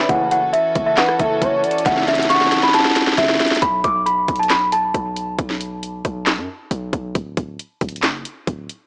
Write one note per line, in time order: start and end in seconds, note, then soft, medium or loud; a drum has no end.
0.09 0.52 F#1 loud
0.09 0.41 A2 medium
0.09 0.41 C#3 loud
0.09 0.41 E3 loud
0.09 3.59 E3 medium
0.09 3.59 C#4 medium
0.09 1.84 F#4 medium
0.09 3.59 A4 medium
0.09 0.26 F#5 medium
0.09 kick loud
0.09 closed hi-hat medium
0.31 0.49 F#5 medium
0.31 closed hi-hat medium
0.53 0.84 E5 medium
0.53 closed hi-hat medium
0.75 0.97 F#1 loud
0.75 kick loud
0.75 closed hi-hat medium
0.86 0.95 E5 medium
0.97 1.18 B4 loud
0.97 1.15 F#5 medium
0.97 snare loud
0.97 clap loud
0.97 closed hi-hat medium
1.08 cross-stick medium
1.19 1.41 F#1 loud
1.19 1.41 A4 medium
1.19 1.82 E5 medium
1.19 kick loud
1.19 closed hi-hat medium
1.42 1.63 F#1 loud
1.42 1.63 C#5 medium
1.42 kick medium
1.42 closed hi-hat medium
1.64 1.85 D5 medium
1.64 closed hi-hat medium
1.71 closed hi-hat medium
1.78 closed hi-hat medium
1.85 2.60 F#1 loud
1.85 3.60 E4 medium
1.85 2.27 E5 loud
1.85 2.03 F#5 medium
1.85 kick loud
1.85 snare medium
1.85 closed hi-hat medium
1.91 snare medium
1.97 snare medium
2.02 snare medium
2.08 2.25 E5 medium
2.08 snare medium
2.08 closed hi-hat soft
2.13 snare medium
2.13 closed hi-hat medium
2.19 snare medium
2.19 closed hi-hat medium
2.24 snare medium
2.30 3.14 F#5 medium
2.30 2.61 C#6 medium
2.30 snare medium
2.30 closed hi-hat medium
2.35 snare medium
2.41 snare medium
2.46 snare medium
2.52 snare medium
2.52 closed hi-hat medium
2.57 snare medium
2.63 2.72 B5 medium
2.63 snare medium
2.69 snare medium
2.74 3.16 A5 medium
2.74 snare medium
2.74 closed hi-hat medium
2.80 snare medium
2.85 snare loud
2.91 snare medium
2.96 snare loud
2.96 closed hi-hat medium
3.02 snare medium
3.07 snare loud
3.13 snare medium
3.18 3.39 F#1 loud
3.18 3.59 E5 medium
3.18 snare loud
3.18 closed hi-hat medium
3.24 snare medium
3.29 snare loud
3.35 snare loud
3.40 snare loud
3.40 closed hi-hat soft
3.46 snare loud
3.46 closed hi-hat medium
3.51 snare loud
3.51 closed hi-hat medium
3.57 snare loud
3.62 3.83 B1 loud
3.62 3.79 B5 medium
3.62 kick loud
3.62 closed hi-hat medium
3.84 4.27 B1 loud
3.84 4.01 D6 medium
3.84 kick loud
3.84 closed hi-hat medium
4.06 4.37 B5 medium
4.06 closed hi-hat medium
4.28 4.92 B1 loud
4.28 kick loud
4.28 closed hi-hat medium
4.36 4.48 A5 medium
4.36 closed hi-hat medium
4.43 closed hi-hat medium
4.50 4.68 B5 medium
4.50 snare loud
4.50 clap loud
4.50 closed hi-hat medium
4.72 5.35 A5 loud
4.72 closed hi-hat medium
4.94 5.37 B1 loud
4.94 kick medium
4.94 closed hi-hat medium
5.16 closed hi-hat medium
5.39 6.02 B1 loud
5.39 kick loud
5.39 closed hi-hat medium
5.50 snare medium
5.61 closed hi-hat medium
5.83 closed hi-hat medium
6.05 6.39 B1 loud
6.05 kick loud
6.05 closed hi-hat medium
6.26 snare loud
6.26 clap medium
6.26 closed hi-hat medium
6.38 6.48 F#2 loud
6.71 6.92 B1 loud
6.71 closed hi-hat medium
6.93 7.14 B1 loud
6.93 kick loud
6.93 closed hi-hat medium
7.15 7.36 D1 loud
7.15 kick loud
7.15 closed hi-hat medium
7.37 7.58 D1 loud
7.37 kick loud
7.37 closed hi-hat medium
7.59 closed hi-hat medium
7.81 8.05 D1 loud
7.81 kick loud
7.81 closed hi-hat medium
7.89 closed hi-hat medium
7.96 closed hi-hat medium
8.03 8.24 F#1 loud
8.03 snare loud
8.03 clap medium
8.03 closed hi-hat medium
8.25 closed hi-hat medium
8.47 8.69 D1 loud
8.47 kick medium
8.47 closed hi-hat medium
8.69 closed hi-hat medium